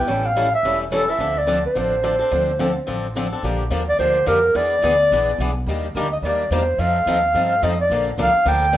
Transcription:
0.00 clarinet G5
0.07 upright bass A1, steel-string acoustic guitar E3 G3 C#4 E4 A4
0.26 clarinet F5
0.37 steel-string acoustic guitar E3 G3 C#4 E4 A4
0.54 clarinet E5
0.63 upright bass E1, steel-string acoustic guitar E3 G3 C#4 E4 A4
0.92 steel-string acoustic guitar E3 G3 C#4 E4 A4, clarinet A4
1.08 steel-string acoustic guitar C#4 E4 A4, clarinet E5
1.19 upright bass D2, steel-string acoustic guitar D3 F3 C4 D4 A4
1.38 clarinet D5
1.47 steel-string acoustic guitar D3 F3 C4 D4 A4
1.66 clarinet C5
1.75 upright bass A1, steel-string acoustic guitar D3 F3 C4 D4 A4
2.04 steel-string acoustic guitar D3 F3 C4 D4 A4
2.19 steel-string acoustic guitar C4 D4 A4
2.31 upright bass D2, steel-string acoustic guitar D3 F3 C4 D4 A4
2.59 steel-string acoustic guitar D3 F3 C4 D4 A4
2.87 upright bass A1, steel-string acoustic guitar D3 F3 C4 D4 A4
3.16 steel-string acoustic guitar D3 F3 C4 D4 A4
3.32 steel-string acoustic guitar C4 D4 A4
3.43 upright bass A#1, steel-string acoustic guitar D3 F3 A#3 D4 G4
3.70 upright bass D#2, steel-string acoustic guitar D3 F3 A#3 D4 G4
3.89 clarinet D5
3.99 upright bass D2, steel-string acoustic guitar D3 F3 A#3 D4 G4, clarinet C5
4.26 upright bass F2, steel-string acoustic guitar D3 F3 A#3 D4 G4, clarinet A#4
4.55 upright bass E2, steel-string acoustic guitar E3 B3 D4 G#4 B4, clarinet D5
4.82 upright bass D2, steel-string acoustic guitar E3 B3 D4 G#4 B4
5.11 upright bass A#1, steel-string acoustic guitar E3 B3 D4 G#4 B4
5.39 upright bass B1, steel-string acoustic guitar E3 B3 D4 G#4 B4
5.67 upright bass D#2, steel-string acoustic guitar D#3 G3 A#3 D4 G4
5.95 upright bass D2, steel-string acoustic guitar D#3 G3 A#3 D4 G4
6.12 clarinet D#5
6.22 upright bass D#2, steel-string acoustic guitar D#3 G3 A#3 D4, clarinet D5
6.26 steel-string acoustic guitar G4
6.51 upright bass E2, steel-string acoustic guitar D#3 G3 A#3 D4 G4, clarinet C5
6.78 upright bass F2, steel-string acoustic guitar F3 C4 D#4 A4, clarinet F5
7.06 upright bass D#2, steel-string acoustic guitar F3 C4 D#4 A4
7.34 upright bass G2, steel-string acoustic guitar F3 C4 D#4 A4
7.62 upright bass F2, steel-string acoustic guitar F3 C4 D#4 A4, clarinet D#5
7.81 clarinet D5
7.90 upright bass A#1, steel-string acoustic guitar D3 F3 A#3 D4 A4
8.18 upright bass C2, steel-string acoustic guitar D3 F3 A#3 D4 A4
8.22 clarinet F5
8.34 muted upright bass stroke
8.45 upright bass D2, steel-string acoustic guitar D3 F3 A#3 D4 A4, clarinet G5
8.73 upright bass A#1, steel-string acoustic guitar D3 F3 A#3 D4

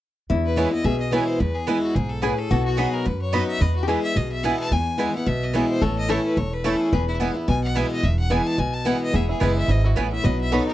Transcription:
0.30 steel-string acoustic guitar E2, upright bass E2, resonator guitar played with a steel bar E4
0.45 fiddle B4
0.56 steel-string acoustic guitar E3 G#3 B3 E4, mandolin B3 E4 B4 G#5, fiddle C#5
0.71 steel-string acoustic guitar B3 E4, fiddle D#5
0.84 upright bass B1, steel-string acoustic guitar B2, resonator guitar played with a steel bar G#4, fiddle E5
1.00 fiddle D#5
1.11 steel-string acoustic guitar E3 G#3 B3 E4, mandolin B3 E4 B4 G#5, fiddle C#5
1.27 fiddle C5
1.40 steel-string acoustic guitar E2, upright bass E2, fiddle B4
1.55 fiddle G#4
1.67 steel-string acoustic guitar E3 G#3 B3 E4, mandolin B3 E4 B4 G#5, fiddle E4
1.83 fiddle F#4
1.95 upright bass B1, steel-string acoustic guitar G#2, fiddle G#4
2.09 fiddle A4
2.22 steel-string acoustic guitar A2, mandolin B3 E4 B4 G#5, resonator guitar played with a steel bar G#4, fiddle B4
2.39 fiddle A4
2.51 upright bass B1, steel-string acoustic guitar B2, resonator guitar played with a steel bar F#4
2.66 fiddle F#4
2.77 steel-string acoustic guitar F#3 B3 D#4 F#4, mandolin B3 F#4 D#5 B5, fiddle G#4, resonator guitar played with a steel bar B4
2.93 fiddle A#4
3.06 steel-string acoustic guitar F#2, upright bass F#2, fiddle B4
3.21 fiddle C#5
3.33 steel-string acoustic guitar F#3 B3 D#4 F#4, mandolin B3 F#4 D#5 B5, fiddle D#5
3.47 fiddle E5
3.60 steel-string acoustic guitar E2, upright bass E2, resonator guitar played with a steel bar B4, fiddle D#5
3.76 fiddle F#4
3.83 resonator guitar played with a steel bar G4
3.87 steel-string acoustic guitar E3 G#3 B3 E4, mandolin B3 E4 B4 G#5, resonator guitar played with a steel bar G#4, fiddle B4
4.03 fiddle E5
4.16 upright bass B1, steel-string acoustic guitar B2, fiddle D#5
4.32 fiddle E5
4.43 steel-string acoustic guitar E3 G#3 B3 E4, mandolin B3 E4 B4 G#5, fiddle F#5
4.59 fiddle A5
4.71 upright bass E2, steel-string acoustic guitar E2, fiddle G#5
4.98 steel-string acoustic guitar E3 G#3 B3 E4, mandolin B3 E4 B4 G#5
5.14 steel-string acoustic guitar B3 E4, fiddle F#5
5.26 upright bass B1, steel-string acoustic guitar B2, fiddle E5
5.43 fiddle D#5
5.53 steel-string acoustic guitar E3 G#3 B3 E4, mandolin B3 E4 B4 G#5, fiddle C#5
5.70 fiddle C5
5.81 upright bass A1, steel-string acoustic guitar A2, resonator guitar played with a steel bar A4, fiddle C#5
5.98 fiddle D#5
6.08 steel-string acoustic guitar E3 A3 C#4 E4, mandolin A3 E4 C#5 A5, resonator guitar played with a steel bar A4, fiddle C#5
6.26 fiddle B4
6.37 upright bass E1, steel-string acoustic guitar E2, fiddle C#5
6.53 fiddle B4
6.64 steel-string acoustic guitar E3 A3 C#4 E4, mandolin A3 E4 C#5 A5, fiddle A4
6.80 fiddle G#4
6.92 upright bass E1, steel-string acoustic guitar E2, fiddle G#4, resonator guitar played with a steel bar B4
7.08 fiddle E4
7.20 steel-string acoustic guitar E3 G#3 B3 E4, mandolin B3 E4 B4 G#5
7.34 steel-string acoustic guitar B3 E4
7.48 upright bass B1, steel-string acoustic guitar B2, fiddle G#5
7.64 fiddle F#5
7.75 steel-string acoustic guitar E3 G#3 B3 E4, mandolin B3 E4 B4 G#5, fiddle E5
7.92 fiddle D#5
8.03 upright bass E1, steel-string acoustic guitar E2, fiddle E5
8.19 fiddle F#5
8.30 steel-string acoustic guitar E3 G#3 B3 E4, mandolin B3 E4 B4 G#5, fiddle G#5
8.47 fiddle A5
8.58 upright bass B1, steel-string acoustic guitar B2, fiddle G#5
8.74 fiddle A5
8.85 steel-string acoustic guitar E3 G#3 B3 E4, mandolin B3 E4 B4 G#5, fiddle F#5
9.03 fiddle D#5
9.13 upright bass E1, steel-string acoustic guitar E2, five-string banjo B3, resonator guitar played with a steel bar G#4, fiddle E5
9.29 five-string banjo E4, fiddle G#4
9.40 upright bass F#1, steel-string acoustic guitar E3 G#3 B3 E4, five-string banjo E3, mandolin B3 E4 B4 G#5, fiddle B4
9.57 five-string banjo E4, fiddle E5
9.68 upright bass G#1, steel-string acoustic guitar G#2, five-string banjo E4, fiddle D#5
9.84 five-string banjo E4, fiddle F#4
9.96 upright bass A1, steel-string acoustic guitar A2, mandolin B3 E4 B4 G#5, five-string banjo B3, fiddle B4
10.12 five-string banjo E4, fiddle E5
10.24 upright bass B1, steel-string acoustic guitar B2, five-string banjo F#3, resonator guitar played with a steel bar B4, fiddle D#5
10.41 fiddle E5
10.52 steel-string acoustic guitar F#3 B3 D#4 F#4, mandolin B3 F#4 D#5 B5, five-string banjo A4, fiddle C#5
10.67 five-string banjo D#4, fiddle A#4

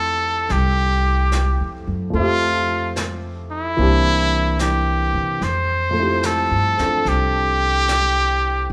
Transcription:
Already playing: upright bass F2, grand piano F3 A3 C4 E4 G4, trumpet A4
0.49 upright bass C2, trumpet G4, brush sweep, snare
1.32 snare, hi-hat pedal
1.60 upright bass F2
1.87 upright bass F#2
2.10 upright bass F2, grand piano F3 A3, brush sweep
2.15 grand piano C4 E5, trumpet F4
2.21 grand piano G4
2.96 snare, hi-hat pedal
3.51 trumpet E4
3.77 upright bass C2, grand piano E3 A#3 C4 D4, brush sweep
3.81 grand piano G4
4.59 trumpet G4, snare, hi-hat pedal
5.13 upright bass C3
5.41 upright bass F2, trumpet C5, brush sweep, snare
5.91 grand piano F3 A3
5.96 grand piano C4 E4
6.02 grand piano G4
6.23 trumpet A4, snare, hi-hat pedal
6.51 upright bass G2
6.77 upright bass E2, grand piano C4 D4 F4 A4, snare
7.05 upright bass C2, trumpet G4, brush sweep, snare
7.88 snare, hi-hat pedal

